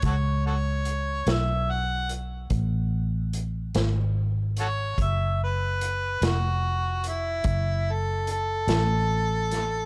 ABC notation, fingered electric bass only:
X:1
M:12/8
L:1/8
Q:3/8=49
K:F#m
V:1 name="Fingered electric bass" clef=bass
C,,3 B,,,3 A,,,3 G,,,3 | F,,,3 ^E,,,3 F,,,3 A,,,3 |]